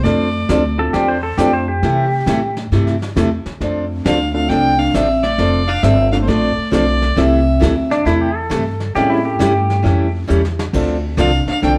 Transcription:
0.04 F2 F3 A3 C4 D4 A4 D5, brush sweep, snare
0.49 D2 F3 C4 D4 A4, snare, hi-hat pedal
0.77 A3 C4 D4 F4 A4
0.93 E2 F3 C4 D4 G4 A4, brush sweep, snare
1.08 C5
1.23 A4
1.37 F2 F3 A3 C4 D4 F4 G4 A4, snare, hi-hat pedal
1.53 C5
1.68 G4
1.82 C3 E3 A3 C4 E4 G4 A4, brush sweep, snare
2.26 A2 C3 E3 A3 E4 A4, snare, hi-hat pedal
2.57 snare
2.72 G2 C3 E3 A3 E4 A4, brush sweep, snare
2.87 snare
3.02 snare
3.16 E2 C3 E3 A3 E4 A4, snare, hi-hat pedal
3.46 muted upright bass stroke, snare
3.60 F2 F3 A3 C4 D4 F4 A4, brush sweep, snare
4.05 D2 F3 C4 D4 A4 F5, snare, hi-hat pedal
4.34 A3 C4 D4 F4 A4 F5
4.49 C2 F3 C4 D4 A4 G5, brush sweep, snare
4.79 D4 F5
4.94 A1 F3 C4 D4 A4 E5, snare, hi-hat pedal
5.23 A3 D5, snare
5.38 F1 F3 C4 D4 A4, brush sweep, snare
5.68 D4 F5
5.83 G1 F3 C4 D4 A4 E5, snare, hi-hat pedal
6.12 A3 C4 D4 F4 A4 F5, snare
6.23 A3 C5
6.27 A1 F3 A3 C4 D4 A4 D5, brush sweep, snare
6.57 muted upright bass stroke
6.71 B1 F3 A3 C4 D4 F4 A4 C5 D5, snare, hi-hat pedal
7.02 snare
7.16 C2 C3 E3 A3 C4 E4 G4 A4 E5, brush sweep, snare
7.60 D2 C3 E3 A3 E4 A4, snare, hi-hat pedal
7.91 D4, snare
8.05 E2 C3 E3 A3 E4 A4, brush sweep, snare
8.21 G4
8.36 A4
8.50 G2 C3 E3 A3 E4 A4, snare, hi-hat pedal
8.80 snare
8.95 A2 E3 G3 G#3 C4 C#4 D#4 E4 F#4 G4 G#4 A4, brush sweep, snare
9.10 E4
9.24 A3 C#4 E4 G4 A4
9.39 G2 E3 G3 C#4 E4 A4, snare, hi-hat pedal
9.70 snare
9.82 F2 E3 G3 C#4 E4 A4, brush sweep, snare
10.27 E2 E3 G3 C#4 E4 A4, hi-hat pedal
10.45 snare
10.59 snare
10.73 D2 D3 F3 A3 C4 D4 F4 A4, brush sweep, kick, snare, crash
11.17 C2 D3 F3 C4 D4 A4 F5, snare, hi-hat pedal
11.47 D4 F5, muted upright bass stroke, snare
11.62 B1 D3 F3 C4 D4 A4 G5, brush sweep, snare

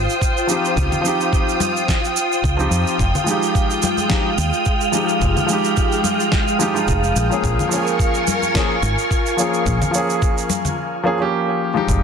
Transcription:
Already playing: F4 C5 G5 D#6
0.09 shaker
0.21 kick, shaker
0.37 shaker
0.47 F3 C4 D#4 G4, shaker
0.65 shaker
0.77 C#2, kick, shaker
0.92 low conga, shaker
1.01 F3 C4
1.05 D#4 G4, shaker
1.20 shaker
1.33 kick, shaker
1.49 shaker
1.60 high conga, shaker
1.76 shaker
1.88 kick, snare, shaker
2.04 shaker
2.16 shaker
2.32 shaker
2.44 C#2, kick, shaker
2.57 F3 C4 D#4 G4, shaker
2.71 F2, shaker
2.87 shaker
2.99 F1 G#3 F5, kick, shaker
3.15 low conga, shaker
3.24 F3 G#3, shaker
3.28 D#4 G4
3.42 shaker
3.55 kick, shaker
3.70 shaker
3.82 high conga, shaker
3.97 high conga, shaker
4.09 F3 G#3 D#4 G4, kick, snare, shaker
4.38 D#2, shaker
4.53 shaker
4.65 kick, shaker
4.81 shaker
4.92 F3 G#3 D#4 G4, shaker
5.08 shaker
5.21 F1, kick, shaker
5.37 low conga, shaker
5.46 F3 G#3, shaker
5.51 D#4 G4
5.64 shaker
5.77 kick, shaker
5.92 shaker
6.04 high conga, shaker
6.20 shaker
6.32 kick, snare, shaker
6.48 shaker
6.59 F3 G#3 D#4 G4, shaker
6.74 F3 G#3 D#4 F4, shaker
6.88 F1, kick, shaker
7.03 shaker
7.16 A#1, shaker
7.30 F3 A#3 C#4 G#4, shaker
7.43 A#1 F4 A#4 G#5 C#6, kick, shaker
7.59 low conga, shaker
7.69 F3 A#3, shaker
7.73 C#4 G#4
7.87 shaker
7.99 kick, shaker
8.14 shaker
8.27 high conga, shaker
8.42 high conga, shaker
8.54 F3 A#3 C#4 G#4, kick, snare, shaker
8.82 G#1, shaker
8.98 shaker
9.11 kick, shaker
9.26 shaker
9.37 F3 A#3 C#4 G#4, shaker
9.54 shaker
9.66 A#1, kick, shaker
9.82 low conga, shaker
9.91 F3 A#3, shaker
9.95 C#4 G#4
10.10 shaker
10.22 kick, shaker
10.38 shaker
10.50 high conga, shaker
10.65 low conga, shaker
11.03 F3 A#3 C#4 G#4
11.18 F3 A#3 C#4 G4
11.74 F3 G#3 D#4 G4
11.88 F1 G#3 F4 G5 D#6, kick, shaker

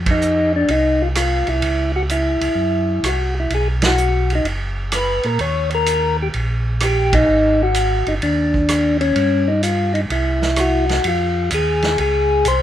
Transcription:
Already playing: F2
0.06 kick, ride
0.11 D#4
0.21 hi-hat pedal
0.56 D4
0.68 C2 D#4, ride
1.02 F4
1.15 F4, cross-stick, hi-hat pedal, ride
1.47 C2 E4, ride
1.62 C#2, ride
1.96 F#4
2.09 E4, hi-hat pedal, ride
2.41 C#2, ride
2.55 F#2
3.03 C2 F#4, cross-stick, hi-hat pedal, ride
3.40 E4
3.50 B1, ride
3.54 G#4
3.82 F#4, snare, ride
3.98 hi-hat pedal
4.30 ride
4.35 D#4
4.45 F#1, ride
4.92 B4, cross-stick, hi-hat pedal, ride
5.23 A#2 A#4, ride
5.39 D#2 C#5, ride
5.70 A#4, ride
5.86 hi-hat pedal, ride
6.22 G4
6.34 A#1, ride
6.80 G4, cross-stick, hi-hat pedal, ride
7.13 D#4, kick, ride
7.28 G#1
7.63 F#4
7.74 hi-hat pedal, ride
8.06 G1 D#4, ride
8.22 D#2 D4, ride
8.54 kick
8.69 cross-stick, hi-hat pedal, ride
9.01 C#4, ride
9.16 G2, ride
9.48 D#4
9.63 F4, hi-hat pedal, ride
9.94 D#4, ride
10.10 C2 E4, ride
10.42 snare
10.56 F#4, cross-stick, hi-hat pedal, ride
10.89 snare, ride
11.04 F2 F4, ride
11.51 D#2 G#4, hi-hat pedal, ride
11.82 snare, ride
11.98 C#2 G#4, ride
12.45 C2 C5, hi-hat pedal, ride

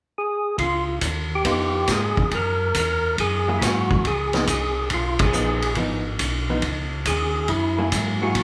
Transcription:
0.18 G#4
0.58 C#2 F4, kick, ride
1.01 D#2, kick, hi-hat pedal, ride
1.35 G4
1.45 F2 B3 D#4 F4, kick, ride
1.88 G#2 G#4, kick, snare, hi-hat pedal, ride
2.17 G#2, kick
2.31 F#2 A#4, kick, ride
2.74 E2 A#4, kick, hi-hat pedal, ride
3.18 F#2 G#4, kick, ride
3.48 F#3 A#3 E4 G#4
3.59 G#2 E4, kick, snare, hi-hat pedal, ride
3.63 F#4
3.91 kick
4.05 C#2 G#4, kick, ride
4.33 F3 B3 D#4, snare, ride
4.47 C2 G#4, kick, hi-hat pedal, ride
4.90 B1 F4, kick, ride
5.19 G#4, kick, ride
5.33 A#1 F3 B3 D#4, hi-hat pedal
5.62 ride
5.75 G#1 F3 B3 D#4, kick, ride
6.19 B1, kick, hi-hat pedal, ride
6.50 F3 B3 D#4
6.62 C#2, kick, ride
7.05 D#2 G#4, kick, hi-hat pedal, ride
7.48 F#2 E4, kick, ride
7.78 F#3 A#3 E4 G#4
7.92 G#2, kick, hi-hat pedal, ride
8.22 F#3 A#3 E4 F#4 G#4
8.35 A#2, kick, ride

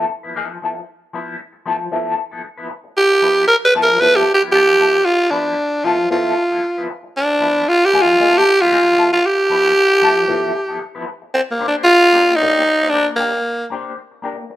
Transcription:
0.09 muted clean electric guitar stroke
0.23 F3 B3 E4 B4
0.36 F3 B3 E4 A4
0.49 muted clean electric guitar stroke
0.62 F3 B3 E4 A4
0.76 muted clean electric guitar stroke
1.13 F3 B3 E4 B4
1.39 muted clean electric guitar stroke
1.53 muted clean electric guitar stroke
1.66 F3 B3 E4 A4
1.79 muted clean electric guitar stroke
1.92 F3 B3 E4 A4
2.19 muted clean electric guitar stroke
2.31 F3 B3 E4 A4
2.44 muted clean electric guitar stroke
2.57 F3 B3 E4 B4
2.70 muted clean electric guitar stroke
2.84 muted clean electric guitar stroke
2.97 G4
3.22 F3 B3 E4 B4
3.48 A#4, muted clean electric guitar stroke
3.62 B4, muted clean electric guitar stroke
3.75 F3 B3 E4 A4
3.83 A#4
3.90 muted clean electric guitar stroke
4.00 F3 B3 E4 A4 B4
4.16 G4
4.27 muted clean electric guitar stroke
4.34 G4
4.40 F3 B3 E4 B4
4.52 F3 B3 E4 G4 A4
4.68 muted clean electric guitar stroke
4.79 F3 B3 E4 A4
4.93 muted clean electric guitar stroke
5.05 F4
5.30 F3 B3 D4 E4 B4
5.58 muted clean electric guitar stroke
5.72 muted clean electric guitar stroke
5.84 F3 B3 E4 F4 A4
5.98 muted clean electric guitar stroke
6.10 F3 B3 E4 F4 A4
6.36 muted clean electric guitar stroke
6.51 F3 B3 E4 A4
6.63 muted clean electric guitar stroke
6.77 F3 B3 E4 B4
6.90 muted clean electric guitar stroke
7.03 muted clean electric guitar stroke
7.17 D4
7.40 F3 B3 E4 B4
7.67 F4, muted clean electric guitar stroke
7.81 muted clean electric guitar stroke
7.85 G4
7.93 F3 B3 E4 A4
8.02 F4
8.07 muted clean electric guitar stroke
8.19 F3 B3 E4 A4
8.38 G4
8.45 muted clean electric guitar stroke
8.59 F3 B3 E4 F4 B4
8.72 F3 B3 E4 A4
8.86 muted clean electric guitar stroke
8.97 F3 B3 E4 A4
9.12 F4, muted clean electric guitar stroke
9.26 G4
9.50 F3 B3 E4 B4
9.76 muted clean electric guitar stroke
9.89 muted clean electric guitar stroke
10.02 F3 B3 E4 A4
10.16 muted clean electric guitar stroke
10.28 F3 B3 E4 A4
10.54 muted clean electric guitar stroke
10.68 F3 B3 E4 A4
10.81 muted clean electric guitar stroke
10.95 F3 B3 E4 B4
11.07 muted clean electric guitar stroke
11.22 muted clean electric guitar stroke
11.34 C4
11.51 A#3
11.59 A#3 D4 G4 C5
11.68 D4
11.84 F4, muted clean electric guitar stroke
11.99 muted clean electric guitar stroke
12.13 A#3 D4 G4 A#4
12.28 muted clean electric guitar stroke
12.36 D#4
12.41 A#3 D4 G4 A#4
12.66 muted clean electric guitar stroke
12.81 A#3 D4 G4 C5
12.89 A#3 D4
12.94 D4 G4 A#4
13.07 muted clean electric guitar stroke
13.16 A#3 D4 G4 A#4
13.32 muted clean electric guitar stroke
13.70 A#3 D4 G4 C5
13.97 muted clean electric guitar stroke
14.11 muted clean electric guitar stroke
14.22 A#3 D4 G4 A#4
14.38 muted clean electric guitar stroke
14.50 muted clean electric guitar stroke

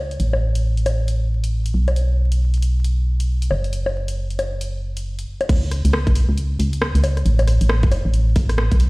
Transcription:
Already playing: C#2
0.11 closed hi-hat
0.20 A1, closed hi-hat
0.33 high bongo
0.55 closed hi-hat
0.77 closed hi-hat
0.86 closed hi-hat, high bongo
1.08 closed hi-hat
1.44 closed hi-hat
1.66 closed hi-hat
1.74 B1
1.88 closed hi-hat, high bongo
1.96 closed hi-hat
2.32 closed hi-hat
2.54 closed hi-hat
2.62 closed hi-hat
2.84 closed hi-hat
3.20 closed hi-hat
3.42 closed hi-hat
3.51 F#1, high bongo
3.64 closed hi-hat
3.73 closed hi-hat
3.86 high bongo
4.08 closed hi-hat
4.31 closed hi-hat
4.39 closed hi-hat, high bongo
4.61 closed hi-hat
4.97 closed hi-hat
5.19 closed hi-hat
5.41 closed hi-hat, high bongo
5.49 C#2, kick, closed hi-hat, crash
5.71 cross-stick, open hi-hat
5.85 C#2, closed hi-hat
5.93 cross-stick
6.07 B1, kick, closed hi-hat
6.16 open hi-hat
6.29 C#2
6.38 closed hi-hat
6.59 C#2, open hi-hat
6.73 closed hi-hat
6.82 cross-stick
6.95 C#2, closed hi-hat
7.04 open hi-hat, high bongo
7.17 cross-stick, closed hi-hat
7.26 A1, closed hi-hat
7.39 open hi-hat, high bongo
7.47 cross-stick, open hi-hat
7.61 A1, closed hi-hat
7.69 cross-stick
7.83 F#1, kick, closed hi-hat
7.92 open hi-hat, high bongo
8.05 A1
8.14 closed hi-hat
8.36 A1, kick, open hi-hat
8.49 cross-stick, open hi-hat
8.58 cross-stick
8.71 B1, kick, closed hi-hat
8.80 open hi-hat

